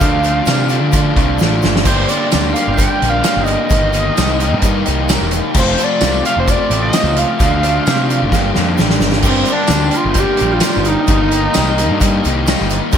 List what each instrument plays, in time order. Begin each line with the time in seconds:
Already playing: analog synth lead F5, glockenspiel F6
0.00 picked electric bass D2, overdriven electric guitar D3 F3 A3 D4 F4, kick, closed hi-hat, shaker
0.22 overdriven electric guitar A3 D4, closed hi-hat, shaker
0.26 overdriven electric guitar F3
0.46 picked electric bass C3, overdriven electric guitar D3 F3 A3 F4, snare, closed hi-hat, tambourine, shaker
0.50 overdriven electric guitar D4
0.69 overdriven electric guitar F3 A3 D4 F4, closed hi-hat, shaker
0.82 picked electric bass D3
0.92 overdriven electric guitar D3 F3 A3 F4, kick, closed hi-hat, shaker
0.96 overdriven electric guitar D4
1.15 picked electric bass C2, overdriven electric guitar F3 A3 D4 F4, kick, closed hi-hat
1.39 picked electric bass A1, overdriven electric guitar D3 F3 A3 F4, snare, shaker
1.43 overdriven electric guitar D4
1.62 picked electric bass G1, snare, shaker
1.76 snare
1.85 picked electric bass G1, overdriven electric guitar G2 D3 G3 A#3 G4, analog synth lead C5, glockenspiel C6, kick, closed hi-hat, crash, shaker
1.89 overdriven electric guitar D4
2.08 overdriven electric guitar A#3 D4, analog synth lead D5, glockenspiel D6, closed hi-hat, shaker
2.12 overdriven electric guitar G3
2.31 picked electric bass D2, overdriven electric guitar D3 G3 A#3 G4, snare, closed hi-hat, tambourine, shaker
2.35 overdriven electric guitar D4
2.53 overdriven electric guitar D4 G4, analog synth lead F5, glockenspiel F6, closed hi-hat, shaker
2.57 overdriven electric guitar G3 A#3
2.68 picked electric bass G1
2.74 overdriven electric guitar G2, analog synth lead G5, glockenspiel G6
2.78 overdriven electric guitar D3 G3 A#3 D4 G4, kick, closed hi-hat, shaker
3.00 picked electric bass A#1, overdriven electric guitar G3 A#3 D4 G4, closed hi-hat
3.05 overdriven electric guitar D4
3.09 analog synth lead F5, glockenspiel F6
3.23 overdriven electric guitar D3 G3 A#3 D4, snare, closed hi-hat, tambourine, shaker
3.27 overdriven electric guitar G4
3.37 picked electric bass G1
3.41 analog synth lead D#5, glockenspiel D#6
3.46 closed hi-hat, shaker
3.69 picked electric bass G1, overdriven electric guitar G2 D#3 G3 A#3 D#4, kick, closed hi-hat, shaker
3.73 overdriven electric guitar G4
3.93 overdriven electric guitar G3 A#3 D#4, closed hi-hat, shaker
4.15 picked electric bass C2, overdriven electric guitar D#3 G3 A#3 D#4 G4, snare, closed hi-hat, tambourine, shaker
4.39 overdriven electric guitar A#3 D#4 G4, closed hi-hat, shaker
4.43 overdriven electric guitar G3
4.54 picked electric bass G2
4.61 overdriven electric guitar G2 D#3 G3 A#3, kick, closed hi-hat, shaker
4.65 overdriven electric guitar D#4 G4
4.86 picked electric bass C2, overdriven electric guitar A#3 D#4 G4, closed hi-hat, shaker
4.90 overdriven electric guitar G3
5.08 overdriven electric guitar D#3 G3 A#3, snare, closed hi-hat, tambourine, shaker
5.12 overdriven electric guitar D#4 G4
5.21 picked electric bass E1
5.31 closed hi-hat, shaker
5.54 picked electric bass F1, overdriven electric guitar F2 C3 F3 A3 C4 F4, kick, crash, shaker
5.59 analog synth lead C5, glockenspiel C6
5.78 overdriven electric guitar A3 C4, closed hi-hat, shaker
5.82 overdriven electric guitar F3, analog synth lead D5, glockenspiel D6
6.01 picked electric bass C2, overdriven electric guitar C3 F3 A3 F4, snare, closed hi-hat, tambourine, shaker
6.05 overdriven electric guitar C4
6.25 overdriven electric guitar F3 A3 C4 F4, analog synth lead F5, glockenspiel F6, closed hi-hat, shaker
6.37 picked electric bass F1, analog synth lead C5, glockenspiel C6
6.47 overdriven electric guitar F2 C3 F3 A3 C4 F4, analog synth lead D5, glockenspiel D6, kick, closed hi-hat, shaker
6.70 picked electric bass A1, overdriven electric guitar F3 A3 C4 F4, closed hi-hat, shaker
6.82 analog synth lead D#5, glockenspiel D#6
6.93 overdriven electric guitar C3 F3 A3 F4, snare, closed hi-hat, tambourine, shaker
6.97 overdriven electric guitar C4
7.04 picked electric bass C#2
7.16 analog synth lead F5, glockenspiel F6, closed hi-hat, shaker
7.40 picked electric bass D2, overdriven electric guitar D3 F3 A3 D4 F4, kick, closed hi-hat, shaker
7.63 overdriven electric guitar F3 A3 D4, closed hi-hat, shaker
7.85 picked electric bass C3, overdriven electric guitar D3 F3 A3 D4 F4, snare, closed hi-hat, tambourine, shaker
8.08 overdriven electric guitar F3 A3 D4 F4, closed hi-hat, shaker
8.23 picked electric bass G#1
8.30 picked electric bass G1, overdriven electric guitar G2 D3 G3 A#3 G4, kick, snare, shaker
8.34 overdriven electric guitar D4
8.54 picked electric bass F2, overdriven electric guitar G3 A#3 D4 G4, snare, shaker
8.76 picked electric bass A1, overdriven electric guitar D3 G3 A#3 D4 G4, snare, shaker
8.90 snare
9.00 picked electric bass G1, snare, shaker
9.12 snare
9.22 picked electric bass G1, overdriven electric guitar G2 D3 G3 A#3 D4, kick, crash, shaker
9.26 analog synth lead C4, overdriven electric guitar G4, glockenspiel C6
9.45 overdriven electric guitar G3 A#3 D4, closed hi-hat, shaker
9.50 analog synth lead D4, glockenspiel D6
9.67 picked electric bass D2, overdriven electric guitar D3 G3 A#3 D4, snare, closed hi-hat, tambourine, shaker
9.74 overdriven electric guitar G4
9.91 overdriven electric guitar G3 A#3 D4 G4, glockenspiel F6, closed hi-hat
9.95 overdriven electric guitar D4, analog synth lead F4, shaker
10.05 picked electric bass G1
10.14 overdriven electric guitar G2 D3 G3 A#3 D4, glockenspiel G6, kick, closed hi-hat, shaker
10.18 overdriven electric guitar G4, analog synth lead G4
10.37 overdriven electric guitar A#3 D4 G4, closed hi-hat, shaker
10.41 picked electric bass A#1, overdriven electric guitar G3 D4
10.52 analog synth lead F4, glockenspiel F6
10.60 overdriven electric guitar D3 G3 A#3 D4 G4, snare, closed hi-hat, tambourine, shaker
10.74 picked electric bass G1, snare
10.85 analog synth lead D#4, glockenspiel D#6, closed hi-hat, shaker
11.07 picked electric bass G1, overdriven electric guitar G2 D#3 G3 A#3 D#4 G4, kick, closed hi-hat, shaker
11.31 overdriven electric guitar A#3 D#4, closed hi-hat, shaker
11.35 overdriven electric guitar G3
11.53 overdriven electric guitar D#3 G3 A#3 D#4, snare, closed hi-hat, tambourine, shaker
11.57 picked electric bass C2, overdriven electric guitar G4
11.78 overdriven electric guitar G3 A#3 D#4 G4, closed hi-hat, shaker
11.91 picked electric bass G2
12.00 overdriven electric guitar G2 D#3 G3 A#3 D#4, kick, closed hi-hat, shaker
12.05 overdriven electric guitar G4
12.23 picked electric bass C2, overdriven electric guitar G3 A#3 D#4 G4, closed hi-hat, shaker
12.28 overdriven electric guitar D#4
12.46 overdriven electric guitar D#3 G3 A#3 D#4, snare, closed hi-hat, tambourine, shaker
12.51 overdriven electric guitar G4
12.60 picked electric bass G1, snare
12.70 closed hi-hat, shaker
12.92 picked electric bass F1, overdriven electric guitar F2 C3 F3, kick, crash, shaker